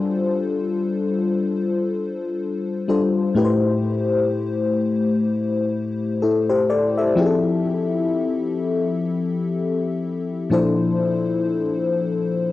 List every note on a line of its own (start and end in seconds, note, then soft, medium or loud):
0.00 2.84 G3 medium
0.00 2.85 D4 medium
0.00 2.85 F4 medium
0.00 2.85 A4 medium
0.00 2.86 C5 medium
2.88 3.36 G3 medium
2.88 3.37 D4 soft
2.88 3.37 F4 medium
2.88 3.37 A4 soft
2.88 3.37 C5 medium
3.35 6.17 A2 medium
3.35 6.18 A3 medium
3.35 6.18 E4 medium
3.35 6.19 G4 medium
3.35 3.45 B4 medium
3.45 6.22 C5 medium
6.22 6.49 E4 medium
6.22 6.49 A4 medium
6.50 6.69 G4 medium
6.50 6.69 C5 medium
6.70 6.97 A4 medium
6.70 6.96 D5 medium
6.98 7.25 A4 medium
6.98 7.43 E5 medium
7.15 10.46 F3 medium
7.15 10.47 C4 medium
7.15 10.47 E4 medium
7.15 10.48 G4 medium
7.15 7.26 G#4 medium
7.26 10.51 A4 medium
10.50 12.52 A#2 medium
10.50 12.52 F3 medium
10.50 12.52 D4 medium
10.50 12.52 E4 medium
10.50 12.52 A4 medium
10.50 12.52 C5 medium